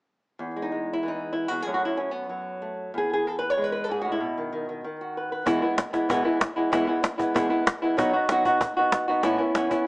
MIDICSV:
0, 0, Header, 1, 4, 480
1, 0, Start_track
1, 0, Key_signature, 4, "major"
1, 0, Tempo, 500000
1, 9476, End_track
2, 0, Start_track
2, 0, Title_t, "Nylon-string guitar"
2, 0, Program_c, 0, 24
2, 376, Note_on_c, 0, 40, 57
2, 542, Note_on_c, 0, 56, 37
2, 598, Note_on_c, 0, 63, 57
2, 679, Note_off_c, 0, 56, 0
2, 691, Note_on_c, 0, 56, 37
2, 887, Note_off_c, 0, 63, 0
2, 897, Note_on_c, 0, 64, 60
2, 988, Note_on_c, 0, 52, 46
2, 1038, Note_on_c, 0, 63, 66
2, 1039, Note_off_c, 0, 64, 0
2, 1271, Note_off_c, 0, 63, 0
2, 1273, Note_on_c, 0, 64, 60
2, 1423, Note_off_c, 0, 64, 0
2, 1423, Note_on_c, 0, 66, 58
2, 1434, Note_off_c, 0, 40, 0
2, 1445, Note_on_c, 0, 40, 47
2, 1559, Note_off_c, 0, 66, 0
2, 1559, Note_on_c, 0, 68, 60
2, 1578, Note_off_c, 0, 52, 0
2, 1581, Note_off_c, 0, 56, 0
2, 1591, Note_off_c, 0, 40, 0
2, 1595, Note_on_c, 0, 42, 53
2, 1601, Note_on_c, 0, 54, 34
2, 1611, Note_on_c, 0, 57, 36
2, 1616, Note_on_c, 0, 61, 36
2, 1666, Note_off_c, 0, 68, 0
2, 1670, Note_on_c, 0, 66, 61
2, 1774, Note_off_c, 0, 66, 0
2, 1777, Note_on_c, 0, 64, 58
2, 1884, Note_off_c, 0, 61, 0
2, 1894, Note_off_c, 0, 64, 0
2, 1895, Note_on_c, 0, 61, 58
2, 2027, Note_off_c, 0, 61, 0
2, 2027, Note_on_c, 0, 59, 62
2, 2191, Note_off_c, 0, 54, 0
2, 2202, Note_on_c, 0, 54, 45
2, 2502, Note_off_c, 0, 57, 0
2, 2514, Note_on_c, 0, 57, 36
2, 2607, Note_off_c, 0, 59, 0
2, 2794, Note_off_c, 0, 54, 0
2, 2795, Note_off_c, 0, 42, 0
2, 2798, Note_off_c, 0, 57, 0
2, 2821, Note_on_c, 0, 40, 52
2, 2858, Note_on_c, 0, 68, 66
2, 2998, Note_off_c, 0, 68, 0
2, 3009, Note_on_c, 0, 68, 69
2, 3134, Note_off_c, 0, 68, 0
2, 3139, Note_on_c, 0, 69, 74
2, 3244, Note_off_c, 0, 69, 0
2, 3251, Note_on_c, 0, 71, 72
2, 3359, Note_off_c, 0, 71, 0
2, 3359, Note_on_c, 0, 73, 71
2, 3432, Note_on_c, 0, 56, 47
2, 3492, Note_off_c, 0, 73, 0
2, 3492, Note_on_c, 0, 71, 75
2, 3563, Note_off_c, 0, 71, 0
2, 3574, Note_on_c, 0, 71, 70
2, 3685, Note_off_c, 0, 71, 0
2, 3685, Note_on_c, 0, 69, 74
2, 3731, Note_off_c, 0, 40, 0
2, 3734, Note_on_c, 0, 44, 46
2, 3746, Note_off_c, 0, 69, 0
2, 3758, Note_on_c, 0, 68, 73
2, 3846, Note_off_c, 0, 68, 0
2, 3854, Note_on_c, 0, 66, 69
2, 3883, Note_off_c, 0, 44, 0
2, 3886, Note_on_c, 0, 45, 47
2, 3937, Note_off_c, 0, 66, 0
2, 3953, Note_on_c, 0, 64, 60
2, 4018, Note_off_c, 0, 56, 0
2, 4035, Note_off_c, 0, 45, 0
2, 4037, Note_on_c, 0, 47, 54
2, 4201, Note_on_c, 0, 51, 38
2, 4333, Note_off_c, 0, 51, 0
2, 4345, Note_on_c, 0, 51, 35
2, 4492, Note_off_c, 0, 51, 0
2, 4502, Note_on_c, 0, 51, 32
2, 4542, Note_off_c, 0, 64, 0
2, 4639, Note_off_c, 0, 51, 0
2, 4642, Note_off_c, 0, 47, 0
2, 4651, Note_on_c, 0, 51, 47
2, 4809, Note_on_c, 0, 66, 36
2, 4966, Note_on_c, 0, 71, 34
2, 5096, Note_off_c, 0, 71, 0
2, 5107, Note_on_c, 0, 71, 35
2, 5233, Note_off_c, 0, 51, 0
2, 5234, Note_off_c, 0, 71, 0
2, 5236, Note_off_c, 0, 66, 0
2, 5237, Note_on_c, 0, 40, 63
2, 5241, Note_on_c, 0, 47, 71
2, 5244, Note_on_c, 0, 52, 71
2, 5248, Note_on_c, 0, 56, 82
2, 5249, Note_on_c, 0, 59, 74
2, 5253, Note_on_c, 0, 64, 80
2, 5381, Note_off_c, 0, 64, 0
2, 5386, Note_off_c, 0, 40, 0
2, 5388, Note_off_c, 0, 47, 0
2, 5389, Note_off_c, 0, 59, 0
2, 5390, Note_off_c, 0, 52, 0
2, 5392, Note_off_c, 0, 56, 0
2, 5393, Note_on_c, 0, 64, 49
2, 5400, Note_on_c, 0, 59, 47
2, 5405, Note_on_c, 0, 56, 43
2, 5413, Note_on_c, 0, 52, 39
2, 5540, Note_off_c, 0, 64, 0
2, 5544, Note_off_c, 0, 52, 0
2, 5544, Note_off_c, 0, 59, 0
2, 5546, Note_off_c, 0, 56, 0
2, 5692, Note_on_c, 0, 64, 49
2, 5697, Note_on_c, 0, 59, 43
2, 5703, Note_on_c, 0, 56, 43
2, 5710, Note_on_c, 0, 52, 42
2, 5841, Note_off_c, 0, 64, 0
2, 5842, Note_off_c, 0, 52, 0
2, 5843, Note_off_c, 0, 59, 0
2, 5845, Note_on_c, 0, 40, 70
2, 5846, Note_off_c, 0, 56, 0
2, 5850, Note_on_c, 0, 47, 71
2, 5853, Note_on_c, 0, 52, 70
2, 5858, Note_on_c, 0, 56, 75
2, 5860, Note_on_c, 0, 59, 77
2, 5866, Note_on_c, 0, 64, 82
2, 5986, Note_off_c, 0, 64, 0
2, 5988, Note_off_c, 0, 59, 0
2, 5993, Note_off_c, 0, 40, 0
2, 5995, Note_off_c, 0, 47, 0
2, 5996, Note_off_c, 0, 56, 0
2, 5997, Note_off_c, 0, 52, 0
2, 5997, Note_on_c, 0, 64, 50
2, 5999, Note_on_c, 0, 59, 47
2, 6008, Note_on_c, 0, 56, 43
2, 6012, Note_on_c, 0, 52, 42
2, 6139, Note_off_c, 0, 52, 0
2, 6144, Note_off_c, 0, 56, 0
2, 6144, Note_off_c, 0, 64, 0
2, 6145, Note_off_c, 0, 59, 0
2, 6297, Note_on_c, 0, 64, 52
2, 6303, Note_on_c, 0, 59, 44
2, 6308, Note_on_c, 0, 56, 50
2, 6312, Note_on_c, 0, 52, 41
2, 6442, Note_off_c, 0, 52, 0
2, 6445, Note_off_c, 0, 64, 0
2, 6448, Note_off_c, 0, 59, 0
2, 6448, Note_on_c, 0, 40, 70
2, 6450, Note_off_c, 0, 56, 0
2, 6451, Note_on_c, 0, 47, 74
2, 6453, Note_on_c, 0, 52, 68
2, 6459, Note_on_c, 0, 59, 75
2, 6461, Note_on_c, 0, 56, 72
2, 6462, Note_on_c, 0, 64, 77
2, 6585, Note_off_c, 0, 64, 0
2, 6595, Note_off_c, 0, 59, 0
2, 6596, Note_off_c, 0, 40, 0
2, 6597, Note_off_c, 0, 47, 0
2, 6597, Note_on_c, 0, 64, 51
2, 6598, Note_off_c, 0, 52, 0
2, 6599, Note_off_c, 0, 56, 0
2, 6606, Note_on_c, 0, 59, 46
2, 6611, Note_on_c, 0, 56, 44
2, 6615, Note_on_c, 0, 52, 43
2, 6741, Note_off_c, 0, 52, 0
2, 6744, Note_off_c, 0, 56, 0
2, 6745, Note_off_c, 0, 59, 0
2, 6745, Note_off_c, 0, 64, 0
2, 6891, Note_on_c, 0, 64, 47
2, 6899, Note_on_c, 0, 59, 46
2, 6906, Note_on_c, 0, 56, 38
2, 6913, Note_on_c, 0, 52, 41
2, 7043, Note_off_c, 0, 52, 0
2, 7043, Note_off_c, 0, 64, 0
2, 7047, Note_off_c, 0, 59, 0
2, 7048, Note_off_c, 0, 56, 0
2, 7050, Note_on_c, 0, 40, 76
2, 7054, Note_on_c, 0, 47, 71
2, 7054, Note_on_c, 0, 52, 69
2, 7058, Note_on_c, 0, 59, 71
2, 7060, Note_on_c, 0, 56, 74
2, 7063, Note_on_c, 0, 64, 83
2, 7187, Note_off_c, 0, 64, 0
2, 7192, Note_off_c, 0, 59, 0
2, 7198, Note_off_c, 0, 40, 0
2, 7198, Note_on_c, 0, 64, 54
2, 7200, Note_off_c, 0, 47, 0
2, 7200, Note_off_c, 0, 52, 0
2, 7200, Note_off_c, 0, 56, 0
2, 7203, Note_on_c, 0, 59, 48
2, 7212, Note_on_c, 0, 56, 41
2, 7217, Note_on_c, 0, 52, 44
2, 7348, Note_off_c, 0, 52, 0
2, 7348, Note_off_c, 0, 64, 0
2, 7350, Note_off_c, 0, 56, 0
2, 7350, Note_off_c, 0, 59, 0
2, 7507, Note_on_c, 0, 64, 57
2, 7514, Note_on_c, 0, 59, 45
2, 7519, Note_on_c, 0, 56, 50
2, 7524, Note_on_c, 0, 52, 44
2, 7649, Note_off_c, 0, 59, 0
2, 7650, Note_on_c, 0, 47, 72
2, 7653, Note_off_c, 0, 52, 0
2, 7653, Note_off_c, 0, 64, 0
2, 7656, Note_off_c, 0, 56, 0
2, 7657, Note_on_c, 0, 54, 71
2, 7660, Note_on_c, 0, 59, 78
2, 7663, Note_on_c, 0, 63, 80
2, 7667, Note_on_c, 0, 66, 75
2, 7797, Note_off_c, 0, 66, 0
2, 7800, Note_off_c, 0, 47, 0
2, 7803, Note_off_c, 0, 54, 0
2, 7803, Note_off_c, 0, 63, 0
2, 7805, Note_off_c, 0, 59, 0
2, 7809, Note_on_c, 0, 66, 59
2, 7815, Note_on_c, 0, 63, 46
2, 7824, Note_on_c, 0, 59, 45
2, 7955, Note_off_c, 0, 66, 0
2, 7957, Note_off_c, 0, 63, 0
2, 7962, Note_off_c, 0, 59, 0
2, 7969, Note_on_c, 0, 54, 52
2, 7973, Note_on_c, 0, 59, 52
2, 7979, Note_on_c, 0, 63, 58
2, 7986, Note_on_c, 0, 66, 61
2, 8105, Note_off_c, 0, 66, 0
2, 8108, Note_off_c, 0, 63, 0
2, 8110, Note_off_c, 0, 54, 0
2, 8112, Note_off_c, 0, 59, 0
2, 8116, Note_on_c, 0, 66, 56
2, 8120, Note_on_c, 0, 63, 49
2, 8127, Note_on_c, 0, 59, 42
2, 8259, Note_off_c, 0, 66, 0
2, 8261, Note_off_c, 0, 63, 0
2, 8262, Note_off_c, 0, 59, 0
2, 8416, Note_on_c, 0, 66, 53
2, 8428, Note_on_c, 0, 63, 48
2, 8437, Note_on_c, 0, 59, 46
2, 8703, Note_off_c, 0, 66, 0
2, 8715, Note_off_c, 0, 63, 0
2, 8715, Note_on_c, 0, 66, 50
2, 8721, Note_off_c, 0, 59, 0
2, 8726, Note_on_c, 0, 63, 46
2, 8731, Note_on_c, 0, 59, 46
2, 8856, Note_off_c, 0, 59, 0
2, 8859, Note_on_c, 0, 45, 75
2, 8860, Note_off_c, 0, 66, 0
2, 8863, Note_on_c, 0, 52, 80
2, 8866, Note_off_c, 0, 63, 0
2, 8867, Note_on_c, 0, 59, 67
2, 8870, Note_on_c, 0, 61, 77
2, 8874, Note_on_c, 0, 64, 85
2, 8996, Note_off_c, 0, 64, 0
2, 9007, Note_off_c, 0, 61, 0
2, 9008, Note_off_c, 0, 45, 0
2, 9008, Note_on_c, 0, 64, 55
2, 9010, Note_off_c, 0, 52, 0
2, 9012, Note_off_c, 0, 59, 0
2, 9018, Note_on_c, 0, 61, 46
2, 9029, Note_on_c, 0, 59, 42
2, 9157, Note_off_c, 0, 59, 0
2, 9158, Note_off_c, 0, 64, 0
2, 9160, Note_off_c, 0, 61, 0
2, 9162, Note_on_c, 0, 52, 49
2, 9168, Note_on_c, 0, 59, 56
2, 9171, Note_on_c, 0, 61, 53
2, 9179, Note_on_c, 0, 64, 62
2, 9307, Note_off_c, 0, 64, 0
2, 9310, Note_off_c, 0, 52, 0
2, 9313, Note_off_c, 0, 59, 0
2, 9315, Note_off_c, 0, 61, 0
2, 9318, Note_on_c, 0, 64, 52
2, 9327, Note_on_c, 0, 61, 47
2, 9334, Note_on_c, 0, 59, 39
2, 9461, Note_off_c, 0, 59, 0
2, 9464, Note_off_c, 0, 61, 0
2, 9464, Note_off_c, 0, 64, 0
2, 9476, End_track
3, 0, Start_track
3, 0, Title_t, "Cajon"
3, 5246, Note_on_c, 9, 36, 85
3, 5342, Note_off_c, 9, 36, 0
3, 5548, Note_on_c, 9, 38, 88
3, 5644, Note_off_c, 9, 38, 0
3, 5700, Note_on_c, 9, 36, 68
3, 5700, Note_on_c, 9, 38, 24
3, 5796, Note_off_c, 9, 36, 0
3, 5796, Note_off_c, 9, 38, 0
3, 5854, Note_on_c, 9, 36, 85
3, 5950, Note_off_c, 9, 36, 0
3, 6155, Note_on_c, 9, 36, 64
3, 6155, Note_on_c, 9, 38, 92
3, 6251, Note_off_c, 9, 36, 0
3, 6251, Note_off_c, 9, 38, 0
3, 6458, Note_on_c, 9, 36, 99
3, 6458, Note_on_c, 9, 38, 28
3, 6554, Note_off_c, 9, 36, 0
3, 6554, Note_off_c, 9, 38, 0
3, 6757, Note_on_c, 9, 38, 88
3, 6853, Note_off_c, 9, 38, 0
3, 6907, Note_on_c, 9, 36, 65
3, 7003, Note_off_c, 9, 36, 0
3, 7062, Note_on_c, 9, 36, 89
3, 7158, Note_off_c, 9, 36, 0
3, 7364, Note_on_c, 9, 36, 72
3, 7364, Note_on_c, 9, 38, 97
3, 7460, Note_off_c, 9, 36, 0
3, 7460, Note_off_c, 9, 38, 0
3, 7665, Note_on_c, 9, 36, 91
3, 7761, Note_off_c, 9, 36, 0
3, 7958, Note_on_c, 9, 38, 88
3, 8054, Note_off_c, 9, 38, 0
3, 8114, Note_on_c, 9, 36, 62
3, 8210, Note_off_c, 9, 36, 0
3, 8264, Note_on_c, 9, 36, 86
3, 8360, Note_off_c, 9, 36, 0
3, 8566, Note_on_c, 9, 38, 98
3, 8662, Note_off_c, 9, 38, 0
3, 8715, Note_on_c, 9, 38, 30
3, 8811, Note_off_c, 9, 38, 0
3, 8863, Note_on_c, 9, 36, 94
3, 8863, Note_on_c, 9, 38, 27
3, 8959, Note_off_c, 9, 36, 0
3, 8959, Note_off_c, 9, 38, 0
3, 9167, Note_on_c, 9, 38, 87
3, 9263, Note_off_c, 9, 38, 0
3, 9322, Note_on_c, 9, 36, 65
3, 9418, Note_off_c, 9, 36, 0
3, 9476, End_track
4, 0, Start_track
4, 0, Title_t, "Muted nylon-string guitar strokes"
4, 5548, Note_on_c, 9, 29, 62
4, 5644, Note_off_c, 9, 29, 0
4, 6149, Note_on_c, 9, 29, 63
4, 6245, Note_off_c, 9, 29, 0
4, 6749, Note_on_c, 9, 29, 72
4, 6845, Note_off_c, 9, 29, 0
4, 7357, Note_on_c, 9, 29, 67
4, 7453, Note_off_c, 9, 29, 0
4, 8269, Note_on_c, 9, 29, 62
4, 8365, Note_off_c, 9, 29, 0
4, 9476, End_track
0, 0, End_of_file